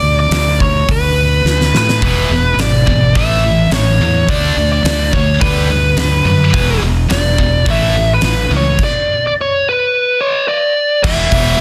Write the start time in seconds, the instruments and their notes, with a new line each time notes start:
Already playing: lead electric guitar D5
0.02 fingered electric bass D2
0.20 lead electric guitar D5
0.31 fingered electric bass D2, snare, open hi-hat
0.60 lead electric guitar C#5, kick
0.88 fingered electric bass D2, lead electric guitar B4, kick, open hi-hat
1.44 fingered electric bass D2, snare
1.61 snare
1.73 fingered electric bass A2, snare
1.77 lead electric guitar B4
1.89 snare
2.02 fingered electric bass E1, distorted electric guitar E2 B2 E3, kick, open hi-hat
2.29 fingered electric bass E1, distorted electric guitar E2 B2
2.57 fingered electric bass G#1, distorted electric guitar E2 B2, snare, open hi-hat
2.61 lead electric guitar D5
2.86 distorted electric guitar E2 B2, kick
3.15 fingered electric bass A1, distorted electric guitar A2 E3 A3, lead electric guitar E5, kick, open hi-hat
3.45 distorted electric guitar A2 E3
3.71 fingered electric bass A1, distorted electric guitar A2 E3, lead electric guitar C#5, snare, open hi-hat
3.99 fingered electric bass E2, distorted electric guitar A2 E3
4.28 fingered electric bass D2, distorted electric guitar D3 A3 D4, lead electric guitar D5, kick, open hi-hat
4.56 fingered electric bass D2, distorted electric guitar D3 A3
4.72 lead electric guitar D5
4.84 fingered electric bass D2, distorted electric guitar D3 A3, snare, open hi-hat
5.13 distorted electric guitar D3 A3, lead electric guitar C#5, kick
5.41 fingered electric bass D2, distorted electric guitar G2 D3 G3, lead electric guitar B4, kick, open hi-hat
5.70 distorted electric guitar G2 D3
5.96 fingered electric bass D2, distorted electric guitar G2 D3, snare, open hi-hat
6.25 fingered electric bass F#2, distorted electric guitar G2 D3, lead electric guitar B4
6.53 fingered electric bass E1, distorted electric guitar E2 B2 E3, kick, open hi-hat
6.82 fingered electric bass E1, distorted electric guitar E2 B2
7.09 fingered electric bass E1, distorted electric guitar E2 B2, lead electric guitar D5, snare, open hi-hat
7.38 distorted electric guitar E2 B2, kick
7.66 fingered electric bass A1, distorted electric guitar A2 E3 A3, lead electric guitar E5, kick, open hi-hat
7.96 distorted electric guitar A2 E3
8.14 lead electric guitar B4
8.21 fingered electric bass A1, distorted electric guitar A2 E3, snare, open hi-hat
8.51 fingered electric bass C#2, distorted electric guitar A2 E3
8.57 lead electric guitar C#5
8.79 kick, crash
8.84 lead electric guitar D5
9.27 lead electric guitar D5
9.41 lead electric guitar C#5
9.69 lead electric guitar B4
10.20 lead electric guitar C#5
10.48 lead electric guitar D5
11.04 fingered electric bass E1, distorted electric guitar E2 B2 E3, lead electric guitar E5, kick, crash
11.32 fingered electric bass E1, distorted electric guitar E2 B2 E3, kick, open hi-hat